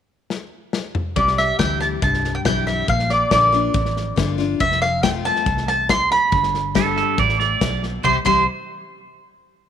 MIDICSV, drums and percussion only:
0, 0, Header, 1, 2, 480
1, 0, Start_track
1, 0, Key_signature, 0, "major"
1, 0, Tempo, 429799
1, 1299, Time_signature, 4, 2, 24, 8
1, 10824, End_track
2, 0, Start_track
2, 0, Title_t, "Drums"
2, 339, Note_on_c, 9, 38, 63
2, 450, Note_off_c, 9, 38, 0
2, 817, Note_on_c, 9, 38, 80
2, 929, Note_off_c, 9, 38, 0
2, 1059, Note_on_c, 9, 45, 85
2, 1171, Note_off_c, 9, 45, 0
2, 1299, Note_on_c, 9, 36, 109
2, 1300, Note_on_c, 9, 38, 33
2, 1410, Note_off_c, 9, 36, 0
2, 1412, Note_off_c, 9, 38, 0
2, 1423, Note_on_c, 9, 38, 36
2, 1534, Note_off_c, 9, 38, 0
2, 1543, Note_on_c, 9, 38, 32
2, 1655, Note_off_c, 9, 38, 0
2, 1779, Note_on_c, 9, 36, 76
2, 1783, Note_on_c, 9, 38, 100
2, 1783, Note_on_c, 9, 44, 78
2, 1891, Note_off_c, 9, 36, 0
2, 1895, Note_off_c, 9, 38, 0
2, 1895, Note_off_c, 9, 44, 0
2, 2022, Note_on_c, 9, 38, 34
2, 2134, Note_off_c, 9, 38, 0
2, 2259, Note_on_c, 9, 36, 110
2, 2261, Note_on_c, 9, 38, 33
2, 2371, Note_off_c, 9, 36, 0
2, 2373, Note_off_c, 9, 38, 0
2, 2386, Note_on_c, 9, 38, 27
2, 2498, Note_off_c, 9, 38, 0
2, 2505, Note_on_c, 9, 38, 35
2, 2616, Note_off_c, 9, 38, 0
2, 2739, Note_on_c, 9, 36, 80
2, 2742, Note_on_c, 9, 38, 101
2, 2742, Note_on_c, 9, 44, 80
2, 2850, Note_off_c, 9, 36, 0
2, 2853, Note_off_c, 9, 38, 0
2, 2853, Note_off_c, 9, 44, 0
2, 2982, Note_on_c, 9, 38, 34
2, 3094, Note_off_c, 9, 38, 0
2, 3220, Note_on_c, 9, 36, 99
2, 3221, Note_on_c, 9, 38, 32
2, 3331, Note_off_c, 9, 36, 0
2, 3333, Note_off_c, 9, 38, 0
2, 3341, Note_on_c, 9, 38, 33
2, 3453, Note_off_c, 9, 38, 0
2, 3460, Note_on_c, 9, 38, 33
2, 3571, Note_off_c, 9, 38, 0
2, 3699, Note_on_c, 9, 36, 79
2, 3700, Note_on_c, 9, 38, 100
2, 3700, Note_on_c, 9, 44, 73
2, 3811, Note_off_c, 9, 36, 0
2, 3812, Note_off_c, 9, 38, 0
2, 3812, Note_off_c, 9, 44, 0
2, 3941, Note_on_c, 9, 38, 34
2, 4052, Note_off_c, 9, 38, 0
2, 4181, Note_on_c, 9, 36, 116
2, 4182, Note_on_c, 9, 38, 33
2, 4293, Note_off_c, 9, 36, 0
2, 4293, Note_off_c, 9, 38, 0
2, 4304, Note_on_c, 9, 38, 33
2, 4415, Note_off_c, 9, 38, 0
2, 4429, Note_on_c, 9, 38, 30
2, 4541, Note_off_c, 9, 38, 0
2, 4662, Note_on_c, 9, 36, 80
2, 4665, Note_on_c, 9, 38, 100
2, 4665, Note_on_c, 9, 44, 83
2, 4774, Note_off_c, 9, 36, 0
2, 4777, Note_off_c, 9, 38, 0
2, 4777, Note_off_c, 9, 44, 0
2, 4901, Note_on_c, 9, 38, 31
2, 5013, Note_off_c, 9, 38, 0
2, 5141, Note_on_c, 9, 38, 33
2, 5142, Note_on_c, 9, 36, 109
2, 5253, Note_off_c, 9, 36, 0
2, 5253, Note_off_c, 9, 38, 0
2, 5268, Note_on_c, 9, 38, 33
2, 5380, Note_off_c, 9, 38, 0
2, 5384, Note_on_c, 9, 38, 31
2, 5496, Note_off_c, 9, 38, 0
2, 5623, Note_on_c, 9, 36, 76
2, 5624, Note_on_c, 9, 38, 101
2, 5624, Note_on_c, 9, 44, 87
2, 5734, Note_off_c, 9, 36, 0
2, 5736, Note_off_c, 9, 38, 0
2, 5736, Note_off_c, 9, 44, 0
2, 5865, Note_on_c, 9, 38, 32
2, 5977, Note_off_c, 9, 38, 0
2, 5982, Note_on_c, 9, 38, 30
2, 6094, Note_off_c, 9, 38, 0
2, 6101, Note_on_c, 9, 36, 113
2, 6101, Note_on_c, 9, 38, 33
2, 6212, Note_off_c, 9, 38, 0
2, 6213, Note_off_c, 9, 36, 0
2, 6224, Note_on_c, 9, 38, 31
2, 6335, Note_off_c, 9, 38, 0
2, 6342, Note_on_c, 9, 38, 32
2, 6454, Note_off_c, 9, 38, 0
2, 6582, Note_on_c, 9, 36, 77
2, 6583, Note_on_c, 9, 38, 101
2, 6583, Note_on_c, 9, 44, 82
2, 6694, Note_off_c, 9, 36, 0
2, 6695, Note_off_c, 9, 38, 0
2, 6695, Note_off_c, 9, 44, 0
2, 6824, Note_on_c, 9, 38, 32
2, 6935, Note_off_c, 9, 38, 0
2, 7062, Note_on_c, 9, 36, 112
2, 7062, Note_on_c, 9, 38, 31
2, 7174, Note_off_c, 9, 36, 0
2, 7174, Note_off_c, 9, 38, 0
2, 7184, Note_on_c, 9, 38, 34
2, 7296, Note_off_c, 9, 38, 0
2, 7307, Note_on_c, 9, 38, 35
2, 7419, Note_off_c, 9, 38, 0
2, 7542, Note_on_c, 9, 36, 78
2, 7543, Note_on_c, 9, 38, 108
2, 7543, Note_on_c, 9, 44, 87
2, 7654, Note_off_c, 9, 36, 0
2, 7655, Note_off_c, 9, 38, 0
2, 7655, Note_off_c, 9, 44, 0
2, 7780, Note_on_c, 9, 38, 35
2, 7892, Note_off_c, 9, 38, 0
2, 8016, Note_on_c, 9, 38, 32
2, 8021, Note_on_c, 9, 36, 110
2, 8127, Note_off_c, 9, 38, 0
2, 8132, Note_off_c, 9, 36, 0
2, 8140, Note_on_c, 9, 38, 29
2, 8252, Note_off_c, 9, 38, 0
2, 8262, Note_on_c, 9, 38, 30
2, 8374, Note_off_c, 9, 38, 0
2, 8503, Note_on_c, 9, 36, 78
2, 8503, Note_on_c, 9, 38, 104
2, 8503, Note_on_c, 9, 44, 79
2, 8614, Note_off_c, 9, 36, 0
2, 8615, Note_off_c, 9, 38, 0
2, 8615, Note_off_c, 9, 44, 0
2, 8746, Note_on_c, 9, 38, 33
2, 8857, Note_off_c, 9, 38, 0
2, 8984, Note_on_c, 9, 36, 61
2, 8987, Note_on_c, 9, 51, 81
2, 9096, Note_off_c, 9, 36, 0
2, 9099, Note_off_c, 9, 51, 0
2, 9224, Note_on_c, 9, 36, 70
2, 9227, Note_on_c, 9, 51, 92
2, 9335, Note_off_c, 9, 36, 0
2, 9339, Note_off_c, 9, 51, 0
2, 10824, End_track
0, 0, End_of_file